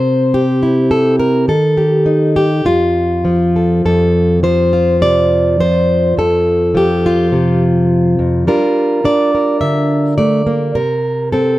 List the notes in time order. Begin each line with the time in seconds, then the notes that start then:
Already playing: C3 C4 C5
0.34 G4
0.63 E4
0.91 A4
1.19 A#4
1.48 D#3 A4
1.77 G4
2.06 D#4
2.36 G4
2.65 F2 F4
3.25 F3
3.56 A4
3.85 F2 A4
4.43 F3 C5
4.73 F4
5.01 C3 D5
5.60 F3 C5
6.17 F2 A4
6.75 F3 G4
7.06 F4
7.32 C3
8.19 F2
8.47 G3 D4 F4 A#4
9.04 D4 D5
9.35 A#4
9.61 D3 E5
10.18 A3 D5
10.46 A#3
10.75 C3 A#4
11.32 C4 A4